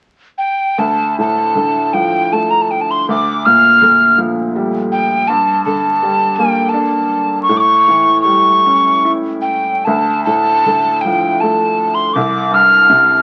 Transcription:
0.38 0.81 G5 medium
0.78 3.03 D2 soft
0.78 1.18 A5 medium
1.18 2.66 A2 soft
1.18 1.95 A5 medium
1.55 3.03 D3 soft
1.93 3.04 F3 soft
1.93 2.34 G5 medium
2.32 3.06 A3 soft
2.32 2.52 A5 medium
2.50 2.63 A#5 medium
2.62 2.72 A5 medium
2.71 2.83 G5 medium
2.81 2.92 A5 soft
2.91 3.08 C6 medium
3.08 5.25 D2 soft
3.08 3.47 D6 medium
3.46 4.88 A#2 soft
3.46 4.19 F6 medium
3.81 5.25 D3 soft
4.18 5.25 F3 soft
4.56 5.27 G3 soft
4.92 5.29 G5 medium
5.28 7.45 G2 soft
5.28 5.64 A5 medium
5.64 7.07 D3 soft
5.64 6.37 A5 medium
6.03 7.45 G3 soft
6.36 7.46 A#3 soft
6.36 6.71 G5 medium
6.69 7.42 A5 medium
6.74 7.47 D4 soft
7.43 7.58 C#6 medium
7.49 9.83 A2 medium
7.57 8.21 C#6 medium
7.57 7.61 D6 medium
7.88 9.43 E3 soft
8.21 9.83 G3 soft
8.21 9.12 C#6 medium
8.66 9.84 C#4 soft
9.05 9.85 E4 soft
9.42 9.86 G5 medium
9.85 12.12 D2 soft
9.85 10.24 A5 medium
10.25 11.75 A2 soft
10.25 11.03 A5 medium
10.66 12.12 D3 soft
11.01 12.13 F3 soft
11.01 11.42 G5 medium
11.41 12.14 A3 soft
11.41 11.96 A5 medium
11.95 12.15 C6 medium
12.13 13.22 C2 medium
12.13 12.56 D6 medium
12.51 13.22 G2 soft
12.51 13.22 F6 medium
12.89 13.22 C3 soft

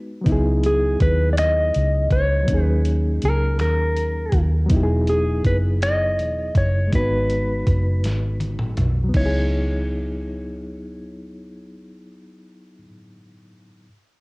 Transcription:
0.00 0.19 G#3 medium
0.00 0.23 B3 medium
0.00 0.22 D#4 medium
0.00 0.23 F#4 medium
0.00 0.25 B4 medium
0.21 2.42 F#3 medium
0.21 2.43 B3 medium
0.26 0.96 C#2 medium
0.26 2.44 D#4 medium
0.26 2.46 E4 medium
0.26 kick loud
0.26 closed hi-hat medium
0.32 2.47 G#4 medium
0.64 0.99 G#4 medium
0.64 closed hi-hat soft
1.00 1.70 D#2 medium
1.00 1.32 B4 medium
1.00 kick medium
1.00 closed hi-hat soft
1.33 1.38 D5 medium
1.37 2.12 D#5 medium
1.37 finger snap medium
1.37 closed hi-hat medium
1.74 2.08 C#2 medium
1.74 closed hi-hat soft
2.10 2.44 C#2 medium
2.10 2.63 C#5 medium
2.10 kick medium
2.10 closed hi-hat soft
2.44 4.64 F#3 medium
2.44 4.65 A#3 medium
2.48 3.18 D#2 medium
2.48 4.67 C#4 soft
2.48 4.68 D#4 medium
2.48 kick loud
2.48 closed hi-hat medium
2.54 4.69 G#4 medium
2.63 2.82 B4 medium
2.85 closed hi-hat soft
3.22 3.60 C#2 medium
3.22 3.60 A#4 medium
3.22 closed hi-hat soft
3.59 4.30 D#2 medium
3.59 4.39 A#4 medium
3.59 finger snap medium
3.59 closed hi-hat medium
3.96 closed hi-hat soft
4.32 4.66 D#2 medium
4.32 kick medium
4.32 closed hi-hat soft
4.66 6.86 F#3 medium
4.66 6.87 B3 medium
4.66 closed hi-hat medium
4.70 5.40 E1 medium
4.70 6.89 D#4 medium
4.70 kick loud
4.74 6.90 E4 medium
4.74 4.80 G4 medium
4.83 6.95 G#4 medium
5.07 5.43 G#4 medium
5.07 closed hi-hat soft
5.44 6.19 F#1 medium
5.44 5.56 B4 medium
5.44 kick medium
5.44 closed hi-hat soft
5.82 6.57 D#5 medium
5.82 finger snap medium
5.82 closed hi-hat medium
6.19 6.52 E1 medium
6.19 closed hi-hat soft
6.55 6.89 F#1 medium
6.55 6.94 C#5 medium
6.55 kick medium
6.55 closed hi-hat soft
6.87 9.08 G#3 soft
6.87 6.98 A#3 soft
6.92 7.63 G#1 medium
6.92 9.11 D#4 soft
6.92 9.12 F#4 soft
6.92 8.38 B4 medium
6.92 kick medium
6.92 closed hi-hat medium
6.97 9.08 B3 soft
6.97 9.13 B4 medium
7.30 closed hi-hat soft
7.67 8.05 F#1 medium
7.67 kick medium
7.67 closed hi-hat soft
8.04 8.74 G#1 medium
8.04 snare soft
8.04 closed hi-hat medium
8.40 closed hi-hat soft
8.40 high tom medium
8.59 mid tom medium
8.77 9.11 B1 medium
8.77 closed hi-hat soft
8.77 mid tom medium
9.04 12.77 F#3 medium
9.09 12.80 B3 medium
9.14 12.83 C#2 medium
9.14 12.83 D#4 medium
9.14 12.84 C#5 medium
9.14 kick medium
9.14 crash medium
9.20 12.85 E4 medium
9.26 12.88 G#4 medium

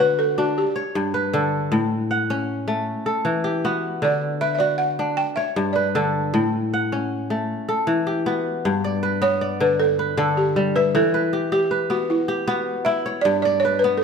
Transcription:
0.00 0.62 D3 medium
0.00 0.51 B3 medium
0.00 0.60 E4 medium
0.00 1.01 F#4 medium
0.00 0.17 B4 medium
0.00 1.03 B4 medium
0.00 0.44 C#5 medium
0.19 0.27 A4 medium
0.38 0.82 D4 medium
0.38 0.55 F#4 medium
0.58 1.49 G4 medium
0.76 1.39 C#5 medium
0.95 1.77 G2 medium
1.14 2.37 B4 medium
1.33 1.77 D3 medium
1.33 2.65 A4 medium
1.72 2.92 A2 medium
2.11 3.07 F#5 medium
2.30 4.08 C#4 medium
2.68 4.67 A3 medium
3.06 4.38 A4 medium
3.25 4.07 E3 medium
3.44 4.66 G4 medium
3.65 5.51 B3 medium
3.65 4.59 F#4 medium
4.02 5.22 D3 medium
4.02 4.43 D5 medium
4.41 5.64 B4 medium
4.41 4.53 E5 medium
4.55 4.79 D5 medium
4.55 4.60 E5 medium
4.60 5.62 F#4 medium
4.78 5.14 F#5 medium
4.99 5.43 D4 medium
5.17 5.37 G5 loud
5.36 6.01 C#5 medium
5.36 5.76 E5 medium
5.56 6.38 G2 medium
5.73 6.99 B4 medium
5.73 6.14 D5 medium
5.95 6.38 D3 medium
5.95 7.27 A4 medium
6.34 7.53 A2 medium
6.74 7.70 F#5 medium
6.92 8.66 C#4 medium
7.30 9.30 A3 medium
7.69 9.00 A4 medium
7.87 8.69 E3 medium
8.07 9.48 G4 medium
8.26 9.21 B3 medium
8.26 9.73 F#4 medium
8.65 10.99 G2 medium
8.84 9.41 D5 medium
9.03 9.99 B4 medium
9.22 11.08 B3 medium
9.22 9.62 C#5 loud
9.41 10.52 D5 medium
9.60 10.16 D3 medium
9.60 9.80 B4 medium
9.80 10.39 A4 medium
9.99 11.14 B4 medium
10.17 10.99 D3 medium
10.17 11.50 A4 medium
10.37 10.73 G4 medium
10.56 10.99 G3 medium
10.76 10.84 B4 medium
10.76 11.79 E5 medium
10.95 13.29 E3 medium
10.95 11.54 A4 medium
11.14 11.70 B4 medium
11.33 11.52 G4 medium
11.52 12.28 G4 medium
11.52 11.92 G4 medium
11.71 12.94 B4 medium
11.90 12.47 B3 medium
11.90 12.10 F#4 medium
12.10 12.46 E4 medium
12.28 13.69 G4 medium
12.47 13.84 B3 medium
12.47 13.31 F#4 medium
12.85 14.04 E4 medium
12.85 13.25 E5 loud
13.06 13.51 C#5 medium
13.21 14.04 G2 medium
13.21 13.41 D5 loud
13.42 13.63 D5 medium
13.42 14.02 D5 medium
13.60 13.81 C#5 loud
13.65 14.04 B4 medium
13.79 14.01 B4 medium
13.84 14.04 B3 medium
13.97 14.04 A4 medium

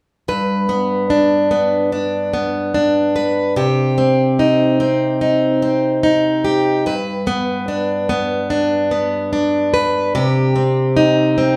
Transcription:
0.28 3.57 G2 medium
0.28 3.14 B4 soft
0.69 1.50 B3 soft
1.10 1.91 D4 soft
1.51 2.32 B3 soft
1.92 2.73 D4 medium
2.34 3.65 B3 soft
2.74 3.65 D4 soft
3.16 3.57 B4 medium
3.56 6.85 C3 medium
3.56 6.44 G4 soft
3.98 4.79 C4 soft
4.39 5.20 D#4 soft
4.80 5.61 C4 soft
5.21 6.02 D#4 soft
5.62 6.94 C4 soft
6.03 6.94 D#4 soft
6.45 6.86 G4 medium
6.86 10.15 G2 medium
6.86 9.72 B4 medium
7.27 8.08 B3 soft
7.68 8.49 D4 soft
8.09 8.90 B3 soft
8.50 9.32 D4 soft
8.91 10.23 B3 soft
9.33 10.23 D4 soft
9.74 10.15 B4 medium
10.15 11.56 C3 medium
10.15 11.56 G4 medium
10.56 11.37 C4 soft
10.97 11.56 D#4 soft
11.38 11.56 C4 soft

